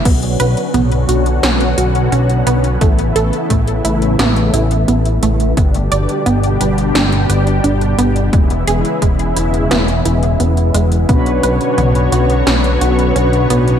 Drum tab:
CC |x---------------|----------------|----------------|----------------|
HH |xxxxxxxxxxxxxxxx|xxxxxxxxxxxxxxxx|xxxxxxxxxxxxxxxx|xxxxxxxxxxxxxxxx|
SD |--------o-------|--------o-------|--------o-------|--------o-------|
T2 |----o-----------|----------------|----------------|----------------|
BD |o---------------|o---o-----------|o---------------|o---o-----------|

CC |----------------|
HH |xxxxxxxxxxxxxxxx|
SD |--------o-------|
T2 |----o-----------|
BD |o---------------|